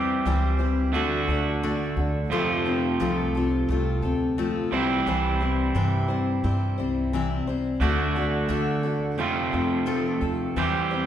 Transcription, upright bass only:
0.00 0.22 E2 medium
0.25 0.93 C#2 medium
0.93 1.26 D2 medium
1.28 1.93 D2 medium
1.96 2.29 D2 medium
2.31 2.96 F2 medium
3.00 3.65 C2 medium
3.69 4.01 C2 medium
4.03 4.68 D2 medium
4.72 5.04 C2 medium
5.06 5.71 C2 medium
5.75 6.39 G2 medium
6.44 6.76 G2 medium
6.79 7.43 C2 medium
7.47 7.79 C2 medium
7.80 8.46 D2 medium
8.49 9.19 D2 medium
9.19 9.51 F2 loud
9.54 10.18 F2 medium
10.21 10.54 D#2 medium
10.56 11.06 E2 medium

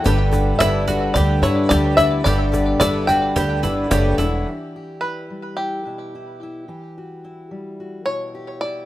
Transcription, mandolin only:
0.06 0.59 G4 medium
0.60 0.87 E4 medium
0.88 1.15 F#4 medium
1.16 1.42 G4 medium
1.43 1.70 E4 medium
1.70 1.97 G4 medium
1.98 2.25 E4 medium
2.26 2.80 G4 medium
2.81 3.08 E4 medium
3.09 3.35 F#4 medium
3.36 3.63 G4 medium
3.63 3.90 E4 medium
3.91 4.18 G4 medium
4.18 4.46 E4 medium

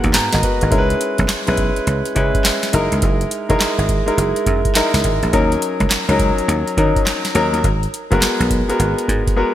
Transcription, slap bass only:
0.04 0.11 D#2 medium
0.15 0.28 G#2 loud
0.34 0.41 G#1 medium
0.62 0.73 G#1 medium
0.72 0.93 C#2 loud
1.19 1.27 B1 medium
1.48 1.70 B1 medium
1.87 2.01 C#2 medium
2.16 2.30 C#3 loud
2.73 2.87 F#1 loud
2.92 3.00 C#2 medium
3.02 3.24 F#1 loud
3.50 3.58 E1 medium
3.60 muted slap bass stroke soft
3.78 4.00 G#1 medium
4.17 4.31 F#1 medium
4.46 4.60 F#2 medium
4.94 5.02 C#2 medium
5.04 5.18 G#1 medium
5.22 5.30 A#1 medium
5.33 5.55 D#2 loud
5.80 5.88 C#2 medium
5.90 muted slap bass stroke soft
6.08 6.31 C#2 medium
6.48 6.62 D#2 medium
6.77 6.91 D#3 medium
7.35 7.49 D#2 medium
7.53 7.61 D#2 medium
7.64 7.86 G#1 loud
8.12 8.19 F#1 medium
8.22 muted slap bass stroke soft
8.40 8.62 B1 medium
8.79 8.93 G#1 medium
9.08 9.22 G#2 loud

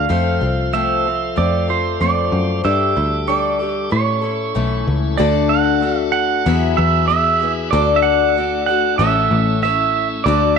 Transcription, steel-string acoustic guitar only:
0.09 0.41 F3 medium
0.09 0.42 A3 medium
0.09 0.42 C4 medium
0.09 0.41 F4 medium
0.09 0.40 A4 medium
0.41 0.73 C4 soft
0.41 0.73 F4 soft
0.41 0.73 A4 medium
0.73 1.05 F3 medium
0.73 1.05 A3 medium
0.73 1.06 C4 medium
0.73 1.05 F4 medium
0.73 1.04 A4 medium
1.05 1.36 C4 soft
1.05 1.37 F4 soft
1.05 1.37 A4 soft
1.36 1.68 A3 medium
1.36 1.69 C4 medium
1.36 1.68 F4 medium
1.36 1.67 A4 medium
1.68 2.00 C4 soft
1.68 2.01 F4 soft
1.68 2.00 A4 soft
2.00 2.64 F3 medium
2.00 2.63 A3 medium
2.00 2.65 C4 medium
2.00 2.65 F4 medium
2.00 2.66 A4 medium
2.64 2.96 G3 medium
2.64 2.97 D4 medium
2.64 2.96 G4 medium
2.64 2.94 A4 medium
2.95 3.27 D4 soft
2.95 3.27 G4 soft
2.95 3.28 A4 soft
3.27 3.60 G3 medium
3.27 3.60 D4 medium
3.27 3.60 G4 medium
3.27 3.58 A4 medium
3.59 3.91 D4 soft
3.59 3.92 G4 soft
3.59 3.91 A4 soft
3.90 4.22 A3 soft
3.90 4.22 C#4 medium
3.90 4.21 E4 medium
3.90 4.20 A4 medium
4.22 4.54 A3 soft
4.22 4.55 C#4 soft
4.22 4.55 E4 soft
4.22 4.54 A4 soft
4.55 5.18 A2 medium
4.55 5.18 E3 medium
4.55 5.17 A3 medium
4.55 5.19 C#4 medium
4.55 5.19 E4 medium
4.55 5.19 A4 medium
5.18 5.82 D3 medium
5.18 5.79 A3 medium
5.18 5.81 D4 medium
5.18 5.82 F#4 medium
5.18 5.82 A4 loud
5.80 6.45 A3 medium
5.80 6.46 D4 medium
5.80 6.46 F#4 medium
5.80 6.46 A4 medium
6.46 7.09 E3 medium
6.46 7.09 F#3 medium
6.46 7.08 B3 medium
6.46 7.09 E4 medium
6.46 7.10 G#4 medium
6.46 7.10 E5 medium
7.09 7.41 B3 medium
7.09 7.41 E4 medium
7.09 7.40 G#4 medium
7.09 7.39 E5 medium
7.40 7.73 B3 soft
7.40 7.73 E4 soft
7.40 7.73 G#4 soft
7.40 7.72 E5 soft
7.73 8.36 D3 medium
7.73 8.35 D4 medium
7.73 8.36 F#4 medium
7.73 8.37 A4 medium
7.73 8.37 D5 medium
8.36 8.68 D4 medium
8.36 8.68 F#4 medium
8.36 8.68 A4 medium
8.36 8.67 D5 medium
8.68 9.00 F#4 soft
8.68 9.00 A4 soft
8.68 9.00 D5 medium
8.99 9.63 A2 medium
8.99 9.63 A3 medium
8.99 9.61 C#4 medium
8.99 9.62 E4 medium
8.99 9.63 A4 medium
8.99 9.63 C#5 medium
9.62 10.26 C#4 medium
9.62 10.27 E4 medium
9.62 10.27 A4 medium
9.62 10.27 C#5 medium
10.26 10.59 D3 medium
10.26 10.59 D4 medium
10.26 10.59 F#4 loud
10.26 10.59 A4 medium
10.26 10.59 D5 loud

